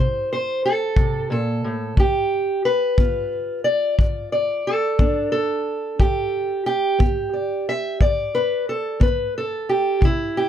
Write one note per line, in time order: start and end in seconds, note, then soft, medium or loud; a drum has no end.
0.00 0.56 C3 medium
0.00 1.94 E4 soft
0.00 0.30 C5 medium
0.33 0.64 C5 medium
0.65 1.31 A4 medium
0.96 1.30 C3 medium
0.96 kick medium
1.30 1.63 A#2 medium
1.30 1.98 A4 medium
1.64 1.97 A2 medium
1.97 2.58 G2 medium
1.97 2.65 G4 medium
1.97 kick medium
2.65 3.64 B4 medium
2.98 3.58 B3 medium
2.98 4.66 F4 soft
2.98 kick medium
3.64 4.31 D5 medium
3.99 4.59 G2 medium
3.99 kick medium
4.32 5.32 D5 medium
4.67 5.31 A4 medium
4.99 5.59 B3 medium
4.99 5.96 D4 soft
4.99 kick medium
5.32 6.66 A4 medium
5.99 6.59 G2 medium
5.99 6.65 G4 medium
5.99 kick medium
6.66 6.98 G4 medium
6.99 7.59 B3 medium
6.99 8.34 G4 soft
6.99 kick medium
7.33 7.67 D5 soft
7.69 8.01 E5 medium
8.00 8.61 G2 medium
8.00 9.01 D5 medium
8.00 kick medium
8.35 8.68 B4 medium
8.69 9.02 A4 medium
9.00 9.61 B3 medium
9.00 9.35 B4 medium
9.00 kick medium
9.38 10.03 A4 medium
9.69 10.02 G4 medium
10.01 10.49 C3 medium
10.01 kick medium
10.05 10.49 E4 medium
10.37 10.49 G4 medium